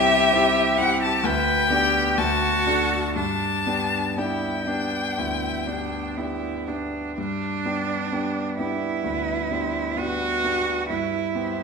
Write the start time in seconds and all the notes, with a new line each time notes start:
Already playing: C2 C4 E4 G4 E5
0.33 C4 E4 G4
0.77 C4 E4 G4 F#5
1.02 A5
1.24 D2 B4 G5
1.70 B3 D4 G4
2.18 D2 F#4 A5
2.66 A3 D4 F#4
3.16 G2 D4 A5
3.66 B3 D4 G4
4.17 B3 D4 E4 G4 G5
4.67 B3 D4 G4
5.18 D2 E4
5.67 B3 D4 G4
6.17 B3 D4 E4 G4
6.67 B3 D4 G4
7.18 G2 D4
7.65 B3 D4 G4
8.12 B3 D4 G4
8.59 B3 D4 E4 G4
9.04 D2 B4
9.51 B3 D4 G4 C5
9.97 B3 D4 F#4 G4 B4
10.43 B3 D4 G4 A4
10.89 G2 E4 B4
11.33 B3 G4 C5